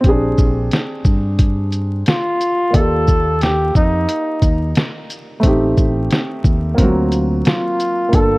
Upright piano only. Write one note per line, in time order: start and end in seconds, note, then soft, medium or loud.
0.01 2.68 C4 medium
0.01 0.12 C#4 medium
0.06 2.73 D4 medium
0.06 2.71 G4 medium
0.06 2.72 G#4 medium
2.70 5.38 A#3 medium
2.70 5.39 D5 medium
2.76 5.41 F4 medium
2.76 5.42 G4 medium
5.40 6.74 A3 medium
5.40 6.75 C4 medium
5.45 6.77 D#4 medium
5.45 6.78 G4 medium
6.75 8.07 A#3 medium
6.75 8.10 C4 medium
6.80 8.13 F#3 medium
6.80 8.11 F4 medium
8.09 8.38 A#3 medium
8.09 8.38 D4 medium
8.14 8.38 F4 medium
8.14 8.38 A4 medium